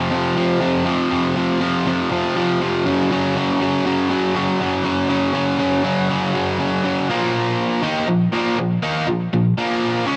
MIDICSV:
0, 0, Header, 1, 2, 480
1, 0, Start_track
1, 0, Tempo, 497512
1, 1075, Time_signature, 4, 2, 24, 8
1, 9807, End_track
2, 0, Start_track
2, 0, Title_t, "Overdriven electric guitar"
2, 0, Program_c, 0, 29
2, 0, Note_on_c, 0, 48, 96
2, 0, Note_on_c, 0, 53, 107
2, 100, Note_off_c, 0, 48, 0
2, 103, Note_off_c, 0, 53, 0
2, 104, Note_on_c, 0, 41, 81
2, 112, Note_on_c, 0, 48, 73
2, 114, Note_on_c, 0, 53, 89
2, 335, Note_off_c, 0, 41, 0
2, 343, Note_off_c, 0, 48, 0
2, 346, Note_on_c, 0, 41, 81
2, 349, Note_off_c, 0, 53, 0
2, 355, Note_on_c, 0, 48, 88
2, 360, Note_on_c, 0, 53, 101
2, 573, Note_off_c, 0, 41, 0
2, 575, Note_off_c, 0, 48, 0
2, 585, Note_off_c, 0, 53, 0
2, 585, Note_on_c, 0, 41, 94
2, 587, Note_on_c, 0, 48, 91
2, 596, Note_on_c, 0, 53, 96
2, 810, Note_off_c, 0, 41, 0
2, 817, Note_off_c, 0, 48, 0
2, 821, Note_on_c, 0, 41, 89
2, 823, Note_off_c, 0, 53, 0
2, 828, Note_on_c, 0, 48, 92
2, 834, Note_on_c, 0, 53, 105
2, 1056, Note_off_c, 0, 41, 0
2, 1061, Note_off_c, 0, 48, 0
2, 1067, Note_off_c, 0, 53, 0
2, 1068, Note_on_c, 0, 41, 101
2, 1072, Note_on_c, 0, 48, 101
2, 1078, Note_on_c, 0, 53, 96
2, 1298, Note_off_c, 0, 41, 0
2, 1306, Note_off_c, 0, 48, 0
2, 1309, Note_on_c, 0, 41, 79
2, 1311, Note_off_c, 0, 53, 0
2, 1317, Note_on_c, 0, 48, 92
2, 1323, Note_on_c, 0, 53, 85
2, 1533, Note_off_c, 0, 41, 0
2, 1541, Note_off_c, 0, 48, 0
2, 1545, Note_on_c, 0, 41, 87
2, 1546, Note_off_c, 0, 53, 0
2, 1553, Note_on_c, 0, 48, 90
2, 1557, Note_on_c, 0, 53, 103
2, 1786, Note_off_c, 0, 41, 0
2, 1793, Note_off_c, 0, 48, 0
2, 1797, Note_on_c, 0, 41, 105
2, 1798, Note_off_c, 0, 53, 0
2, 1804, Note_on_c, 0, 48, 100
2, 1810, Note_on_c, 0, 53, 93
2, 2026, Note_off_c, 0, 41, 0
2, 2027, Note_off_c, 0, 48, 0
2, 2037, Note_off_c, 0, 53, 0
2, 2037, Note_on_c, 0, 41, 77
2, 2039, Note_on_c, 0, 48, 76
2, 2048, Note_on_c, 0, 53, 102
2, 2264, Note_off_c, 0, 41, 0
2, 2270, Note_off_c, 0, 48, 0
2, 2275, Note_off_c, 0, 53, 0
2, 2275, Note_on_c, 0, 41, 95
2, 2282, Note_on_c, 0, 48, 101
2, 2286, Note_on_c, 0, 53, 117
2, 2503, Note_off_c, 0, 41, 0
2, 2512, Note_off_c, 0, 48, 0
2, 2515, Note_on_c, 0, 41, 94
2, 2516, Note_off_c, 0, 53, 0
2, 2523, Note_on_c, 0, 48, 104
2, 2528, Note_on_c, 0, 53, 96
2, 2740, Note_off_c, 0, 41, 0
2, 2744, Note_off_c, 0, 48, 0
2, 2746, Note_off_c, 0, 53, 0
2, 2753, Note_on_c, 0, 42, 100
2, 2760, Note_on_c, 0, 49, 115
2, 2763, Note_on_c, 0, 54, 118
2, 2996, Note_off_c, 0, 49, 0
2, 2997, Note_off_c, 0, 42, 0
2, 3001, Note_on_c, 0, 42, 93
2, 3008, Note_on_c, 0, 49, 104
2, 3011, Note_off_c, 0, 54, 0
2, 3015, Note_on_c, 0, 54, 107
2, 3233, Note_off_c, 0, 49, 0
2, 3235, Note_off_c, 0, 42, 0
2, 3239, Note_on_c, 0, 42, 85
2, 3245, Note_on_c, 0, 49, 86
2, 3248, Note_off_c, 0, 54, 0
2, 3251, Note_on_c, 0, 54, 94
2, 3472, Note_off_c, 0, 49, 0
2, 3480, Note_off_c, 0, 42, 0
2, 3483, Note_on_c, 0, 49, 92
2, 3484, Note_on_c, 0, 42, 88
2, 3490, Note_off_c, 0, 54, 0
2, 3494, Note_on_c, 0, 54, 97
2, 3710, Note_off_c, 0, 42, 0
2, 3713, Note_off_c, 0, 49, 0
2, 3714, Note_on_c, 0, 42, 99
2, 3722, Note_off_c, 0, 54, 0
2, 3725, Note_on_c, 0, 49, 94
2, 3726, Note_on_c, 0, 54, 106
2, 3942, Note_off_c, 0, 42, 0
2, 3953, Note_off_c, 0, 49, 0
2, 3953, Note_on_c, 0, 42, 83
2, 3954, Note_off_c, 0, 54, 0
2, 3964, Note_on_c, 0, 49, 79
2, 3965, Note_on_c, 0, 54, 100
2, 4190, Note_off_c, 0, 42, 0
2, 4197, Note_off_c, 0, 49, 0
2, 4199, Note_off_c, 0, 54, 0
2, 4202, Note_on_c, 0, 42, 88
2, 4209, Note_on_c, 0, 49, 102
2, 4211, Note_on_c, 0, 54, 109
2, 4432, Note_off_c, 0, 42, 0
2, 4438, Note_off_c, 0, 49, 0
2, 4443, Note_on_c, 0, 42, 84
2, 4446, Note_off_c, 0, 54, 0
2, 4450, Note_on_c, 0, 49, 89
2, 4458, Note_on_c, 0, 54, 92
2, 4659, Note_off_c, 0, 42, 0
2, 4665, Note_off_c, 0, 49, 0
2, 4670, Note_on_c, 0, 42, 91
2, 4671, Note_off_c, 0, 54, 0
2, 4676, Note_on_c, 0, 49, 95
2, 4683, Note_on_c, 0, 54, 93
2, 4900, Note_off_c, 0, 42, 0
2, 4907, Note_off_c, 0, 49, 0
2, 4909, Note_off_c, 0, 54, 0
2, 4911, Note_on_c, 0, 42, 104
2, 4919, Note_on_c, 0, 49, 103
2, 4920, Note_on_c, 0, 54, 106
2, 5138, Note_off_c, 0, 42, 0
2, 5142, Note_off_c, 0, 49, 0
2, 5148, Note_off_c, 0, 54, 0
2, 5149, Note_on_c, 0, 42, 83
2, 5153, Note_on_c, 0, 49, 86
2, 5160, Note_on_c, 0, 54, 97
2, 5370, Note_off_c, 0, 42, 0
2, 5380, Note_off_c, 0, 49, 0
2, 5382, Note_on_c, 0, 42, 95
2, 5387, Note_off_c, 0, 54, 0
2, 5392, Note_on_c, 0, 49, 101
2, 5399, Note_on_c, 0, 54, 91
2, 5615, Note_off_c, 0, 42, 0
2, 5623, Note_off_c, 0, 49, 0
2, 5626, Note_off_c, 0, 54, 0
2, 5626, Note_on_c, 0, 42, 97
2, 5635, Note_on_c, 0, 49, 97
2, 5638, Note_on_c, 0, 54, 112
2, 5865, Note_off_c, 0, 42, 0
2, 5873, Note_off_c, 0, 49, 0
2, 5877, Note_on_c, 0, 42, 75
2, 5880, Note_off_c, 0, 54, 0
2, 5885, Note_on_c, 0, 49, 84
2, 5892, Note_on_c, 0, 54, 94
2, 6104, Note_off_c, 0, 42, 0
2, 6110, Note_off_c, 0, 49, 0
2, 6115, Note_off_c, 0, 54, 0
2, 6116, Note_on_c, 0, 42, 100
2, 6121, Note_on_c, 0, 49, 88
2, 6126, Note_on_c, 0, 54, 106
2, 6344, Note_off_c, 0, 42, 0
2, 6354, Note_off_c, 0, 49, 0
2, 6355, Note_off_c, 0, 54, 0
2, 6355, Note_on_c, 0, 42, 88
2, 6366, Note_on_c, 0, 49, 84
2, 6366, Note_on_c, 0, 54, 101
2, 6591, Note_off_c, 0, 42, 0
2, 6597, Note_off_c, 0, 49, 0
2, 6603, Note_off_c, 0, 54, 0
2, 6603, Note_on_c, 0, 42, 97
2, 6608, Note_on_c, 0, 49, 83
2, 6615, Note_on_c, 0, 54, 92
2, 6822, Note_off_c, 0, 42, 0
2, 6825, Note_off_c, 0, 49, 0
2, 6828, Note_off_c, 0, 54, 0
2, 6844, Note_on_c, 0, 46, 89
2, 6849, Note_on_c, 0, 53, 92
2, 6851, Note_on_c, 0, 58, 111
2, 7549, Note_off_c, 0, 46, 0
2, 7549, Note_off_c, 0, 58, 0
2, 7552, Note_off_c, 0, 53, 0
2, 7552, Note_on_c, 0, 51, 80
2, 7560, Note_on_c, 0, 58, 90
2, 7562, Note_on_c, 0, 63, 107
2, 7784, Note_off_c, 0, 51, 0
2, 7788, Note_off_c, 0, 58, 0
2, 7789, Note_off_c, 0, 63, 0
2, 7798, Note_on_c, 0, 46, 58
2, 7801, Note_on_c, 0, 53, 68
2, 7986, Note_off_c, 0, 46, 0
2, 7988, Note_off_c, 0, 53, 0
2, 8039, Note_on_c, 0, 46, 89
2, 8045, Note_on_c, 0, 53, 95
2, 8052, Note_on_c, 0, 58, 92
2, 8268, Note_off_c, 0, 46, 0
2, 8271, Note_off_c, 0, 53, 0
2, 8274, Note_off_c, 0, 58, 0
2, 8283, Note_on_c, 0, 46, 64
2, 8290, Note_on_c, 0, 53, 73
2, 8469, Note_off_c, 0, 46, 0
2, 8473, Note_off_c, 0, 53, 0
2, 8517, Note_on_c, 0, 51, 89
2, 8521, Note_on_c, 0, 58, 96
2, 8525, Note_on_c, 0, 63, 102
2, 8747, Note_off_c, 0, 51, 0
2, 8749, Note_off_c, 0, 58, 0
2, 8751, Note_off_c, 0, 63, 0
2, 8757, Note_on_c, 0, 46, 75
2, 8762, Note_on_c, 0, 53, 76
2, 8946, Note_off_c, 0, 46, 0
2, 8949, Note_off_c, 0, 53, 0
2, 9004, Note_on_c, 0, 46, 64
2, 9009, Note_on_c, 0, 53, 68
2, 9190, Note_off_c, 0, 46, 0
2, 9193, Note_off_c, 0, 53, 0
2, 9240, Note_on_c, 0, 46, 94
2, 9245, Note_on_c, 0, 53, 96
2, 9249, Note_on_c, 0, 58, 111
2, 9703, Note_off_c, 0, 46, 0
2, 9707, Note_on_c, 0, 49, 84
2, 9709, Note_off_c, 0, 53, 0
2, 9713, Note_on_c, 0, 56, 83
2, 9714, Note_off_c, 0, 58, 0
2, 9721, Note_on_c, 0, 61, 105
2, 9807, Note_off_c, 0, 49, 0
2, 9807, Note_off_c, 0, 56, 0
2, 9807, Note_off_c, 0, 61, 0
2, 9807, End_track
0, 0, End_of_file